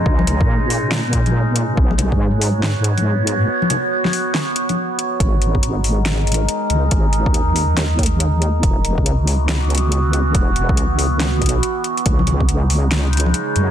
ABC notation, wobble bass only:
X:1
M:4/4
L:1/16
Q:"Swing 16ths" 1/4=140
K:G#m
V:1 name="Wobble bass" clef=bass
C,,3 A,,12- A,, | B,,,3 G,,12- G,, | z16 | G,,,12 z2 C,,2 |
G,,,3 D,,12- D,, | E,,,3 C,,12- C,, | E,,,3 C,,6- C,, B,,,2 z4 | C,,12 z2 F,,2 |]